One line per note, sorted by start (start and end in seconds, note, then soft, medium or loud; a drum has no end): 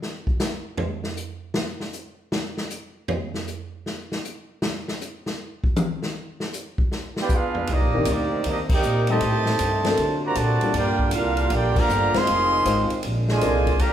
0.02 snare soft
0.27 kick medium
0.40 snare loud
0.40 hi-hat pedal medium
0.78 floor tom loud
1.04 snare soft
1.17 hi-hat pedal medium
1.54 snare loud
1.80 snare soft
1.93 hi-hat pedal medium
2.32 snare loud
2.57 snare medium
2.70 hi-hat pedal medium
3.08 floor tom loud
3.34 snare soft
3.47 hi-hat pedal medium
3.86 snare soft
4.12 snare medium
4.25 hi-hat pedal medium
4.62 snare loud
4.88 snare medium
5.01 hi-hat pedal medium
5.26 snare medium
5.64 kick medium
5.76 hi-hat pedal medium
5.76 high tom loud
6.02 snare medium
6.40 snare medium
6.53 hi-hat pedal medium
6.78 kick medium
6.92 snare soft
7.16 7.31 B3 medium
7.16 7.31 G4 medium
7.16 snare medium
7.21 7.31 D4 medium
7.21 7.32 F4 medium
7.21 7.32 B4 medium
7.21 7.32 D5 medium
7.21 7.32 G5 medium
7.29 7.70 B3 medium
7.29 7.70 F4 medium
7.29 kick medium
7.29 hi-hat pedal medium
7.34 7.70 D4 medium
7.34 7.70 G#4 medium
7.34 7.70 B4 medium
7.34 7.71 F5 loud
7.55 floor tom medium
7.67 7.81 C2 medium
7.67 9.95 C3 medium
7.67 8.07 G3 medium
7.67 9.20 A#3 medium
7.67 8.07 A#3 medium
7.67 9.20 C4 medium
7.67 9.20 D#4 medium
7.67 8.07 D#4 medium
7.67 ride medium
7.72 8.09 A#3 medium
7.72 8.08 G4 medium
7.72 8.09 D5 medium
7.72 8.09 D#5 loud
7.81 7.94 A#1 medium
7.94 8.06 G1 medium
7.94 8.06 D#3 medium
7.94 8.06 A#3 medium
7.94 8.06 C4 medium
7.94 8.06 D4 medium
7.94 8.06 G4 medium
8.05 8.44 D2 medium
8.05 8.46 G3 medium
8.05 8.46 A#3 medium
8.05 8.46 D#4 medium
8.05 hi-hat pedal medium
8.05 ride medium
8.10 8.47 A#3 medium
8.10 8.47 D#4 medium
8.10 8.47 G4 medium
8.10 8.47 D5 medium
8.44 8.82 D#2 medium
8.44 8.58 G3 medium
8.44 8.58 A#3 medium
8.44 ride medium
8.48 8.60 A#3 medium
8.48 8.60 D4 medium
8.48 8.59 D#4 medium
8.48 8.59 G4 medium
8.48 8.59 D#5 medium
8.69 9.07 D#4 medium
8.69 9.07 A#4 medium
8.69 9.07 D5 medium
8.69 9.07 G5 loud
8.69 kick loud
8.69 crash medium
8.73 9.07 A#3 loud
8.73 9.07 D#4 medium
8.73 9.08 G4 medium
8.82 9.20 A#2 medium
8.82 hi-hat pedal medium
9.07 9.20 G3 medium
9.07 9.21 A3 medium
9.07 10.20 A3 medium
9.07 9.20 C4 medium
9.07 9.21 D#4 medium
9.07 9.94 G4 loud
9.07 9.21 A4 medium
9.07 10.20 C5 loud
9.07 9.94 D#5 loud
9.07 10.20 A5 loud
9.07 ride medium
9.11 10.20 C3 loud
9.11 9.95 D#3 medium
9.20 9.58 A2 medium
9.20 9.98 G3 medium
9.20 9.98 A3 medium
9.20 9.98 D#4 medium
9.20 ride medium
9.46 snare medium
9.59 9.97 G2 medium
9.59 hi-hat pedal medium
9.59 ride medium
9.84 9.96 F#3 medium
9.84 9.97 A#3 medium
9.84 9.96 C4 medium
9.84 9.97 D4 medium
9.84 9.97 A4 medium
9.84 snare medium
9.84 ride medium
9.97 12.26 A#2 medium
9.97 10.75 C3 medium
9.97 10.35 D3 medium
9.97 10.75 F#3 medium
9.97 10.75 D4 medium
9.97 ride medium
10.25 10.37 C3 medium
10.25 10.37 F#3 medium
10.25 10.37 A#3 medium
10.25 10.36 F#4 medium
10.25 10.36 C5 medium
10.25 10.36 D5 medium
10.25 10.36 A#5 loud
10.35 10.60 A#2 medium
10.35 10.76 C3 medium
10.35 10.75 F#3 medium
10.35 10.76 A3 medium
10.35 10.75 F#4 loud
10.35 10.75 C5 medium
10.35 10.75 D5 medium
10.35 10.75 A5 loud
10.35 hi-hat pedal medium
10.35 ride medium
10.61 10.73 G3 medium
10.61 10.74 A#3 medium
10.61 10.74 D4 medium
10.61 10.74 F4 medium
10.61 10.74 A#4 medium
10.61 muted upright bass stroke soft
10.61 ride medium
10.74 11.11 G2 medium
10.74 12.26 D3 medium
10.74 12.26 G3 medium
10.74 11.11 A#3 loud
10.74 11.11 D4 medium
10.74 13.01 F4 medium
10.74 11.11 F4 loud
10.74 11.10 G4 medium
10.74 11.11 A#4 loud
10.74 11.11 D5 loud
10.74 11.11 G5 loud
10.74 ride medium
10.99 kick medium
11.11 11.49 C2 loud
11.11 11.52 A#3 medium
11.11 11.52 D4 medium
11.11 11.51 F4 medium
11.11 11.52 G4 medium
11.11 11.52 F5 loud
11.11 hi-hat pedal medium
11.11 ride medium
11.15 11.52 D4 medium
11.15 11.52 A#4 medium
11.37 ride medium
11.50 11.74 A#1 medium
11.50 11.76 A#3 medium
11.50 11.77 D4 loud
11.50 11.77 G4 loud
11.50 ride medium
11.55 11.78 F4 loud
11.55 11.79 A#4 medium
11.55 11.78 D5 medium
11.55 11.79 G5 loud
11.75 12.15 D3 loud
11.75 12.15 F3 loud
11.75 12.15 A#3 loud
11.75 12.16 G4 loud
11.75 12.16 D5 loud
11.75 12.15 F5 loud
11.75 12.16 A#5 loud
11.75 muted upright bass stroke soft
11.75 kick loud
11.75 crash medium
11.89 12.13 G1 loud
11.89 hi-hat pedal medium
12.14 12.99 D#3 loud
12.14 12.98 G#3 loud
12.14 12.26 G#3 medium
12.14 12.98 C4 loud
12.14 12.26 C4 medium
12.14 12.26 D#4 medium
12.14 12.26 F4 medium
12.14 12.99 G#4 loud
12.14 12.26 C5 medium
12.14 12.99 D#5 loud
12.14 12.99 F5 loud
12.14 12.99 C6 loud
12.14 muted upright bass stroke soft
12.14 snare medium
12.14 ride medium
12.27 12.65 F1 medium
12.27 13.03 D#3 medium
12.27 13.79 G#3 medium
12.27 13.03 C4 medium
12.27 ride medium
12.65 12.89 G#1 medium
12.65 12.88 G#3 medium
12.65 12.88 C4 medium
12.65 12.89 D#4 medium
12.65 12.89 F4 medium
12.65 12.89 C5 medium
12.65 hi-hat pedal medium
12.65 ride medium
12.90 muted upright bass stroke soft
12.90 ride medium
13.03 13.41 A#1 medium
13.03 13.79 C3 medium
13.03 13.79 A#3 medium
13.03 13.93 D4 medium
13.03 ride medium
13.28 13.76 D3 loud
13.28 13.77 F3 loud
13.28 13.77 G#3 medium
13.28 13.77 F4 loud
13.28 13.77 C5 medium
13.28 13.77 D5 medium
13.28 13.77 G#5 loud
13.28 snare medium
13.41 13.79 C2 medium
13.41 13.65 G#3 medium
13.41 13.64 C4 medium
13.41 13.65 D4 medium
13.41 13.65 F4 medium
13.41 13.65 A#4 medium
13.41 hi-hat pedal medium
13.41 ride medium
13.67 kick medium
13.67 ride medium
13.79 13.93 D#2 medium
13.79 13.93 D3 medium
13.79 13.93 G3 medium
13.79 13.93 G3 loud
13.79 13.93 A#3 medium
13.79 13.93 F4 medium
13.79 13.93 G4 loud
13.79 13.93 D5 loud
13.79 13.93 F5 loud
13.79 13.93 A#5 loud
13.79 ride medium